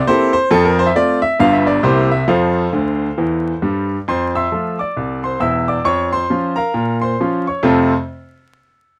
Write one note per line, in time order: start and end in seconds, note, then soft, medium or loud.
0.07 0.31 A#3 medium
0.07 0.31 C4 medium
0.07 0.32 E4 medium
0.07 0.33 G4 medium
0.07 0.33 A4 medium
0.07 0.30 C5 loud
0.33 0.48 C5 loud
0.51 0.88 F2 loud
0.51 0.89 F3 medium
0.51 0.65 A4 loud
0.65 0.78 A#4 medium
0.79 0.87 C5 loud
0.87 0.95 E5 medium
0.96 1.20 A3 medium
0.96 1.20 C4 medium
0.96 1.20 F4 medium
0.96 1.19 D5 loud
1.22 1.37 E5 loud
1.40 1.77 G1 medium
1.40 1.78 G2 medium
1.40 1.64 G3 medium
1.40 1.65 B3 medium
1.40 1.65 F4 medium
1.40 1.53 F5 loud
1.53 1.67 E5 medium
1.67 1.82 D5 medium
1.83 2.21 C2 medium
1.83 2.21 C3 medium
1.83 2.08 G3 medium
1.83 2.08 A#3 medium
1.83 2.09 E4 medium
1.83 2.10 G4 medium
1.83 2.07 C5 medium
2.11 2.26 E5 medium
2.28 2.66 F2 medium
2.28 2.66 F3 medium
2.28 3.86 A4 medium
2.28 3.86 C5 medium
2.28 3.65 F5 medium
2.73 3.07 D2 medium
2.73 3.06 D3 medium
3.18 3.51 E2 medium
3.18 3.51 E3 medium
3.62 3.96 G2 medium
3.62 3.96 G3 medium
4.08 4.46 F2 medium
4.08 4.34 C5 medium
4.08 4.31 C6 medium
4.35 4.77 E5 medium
4.35 4.77 C6 medium
4.35 4.73 E6 medium
4.52 4.76 F3 soft
4.52 4.77 A3 soft
4.52 4.77 F4 soft
4.79 5.21 D5 medium
4.79 5.17 D6 medium
4.97 5.34 C2 medium
5.24 5.41 C5 medium
5.24 5.39 C6 medium
5.40 5.77 E1 medium
5.40 5.76 E2 medium
5.40 5.67 E5 medium
5.40 5.64 E6 loud
5.68 5.85 D5 medium
5.68 5.83 D6 medium
5.85 6.23 F2 medium
5.85 6.11 C#5 medium
5.85 6.08 C#6 loud
6.13 6.55 C5 medium
6.13 6.51 C6 medium
6.30 6.55 F3 soft
6.30 6.55 C#4 soft
6.30 6.55 F4 medium
6.56 6.99 A#4 medium
6.56 6.99 F5 medium
6.56 6.95 A#5 medium
6.74 7.13 A#2 medium
7.01 7.44 C5 medium
7.01 7.40 C6 medium
7.20 7.45 F3 soft
7.20 7.45 C#4 medium
7.20 7.45 F4 medium
7.47 7.64 C#5 medium
7.47 7.62 C#6 medium
7.63 7.92 F2 loud
7.63 7.92 C3 medium
7.63 7.92 A3 medium
7.63 7.93 C4 medium
7.63 7.93 F4 medium
7.63 7.93 A4 medium
7.63 7.93 A5 medium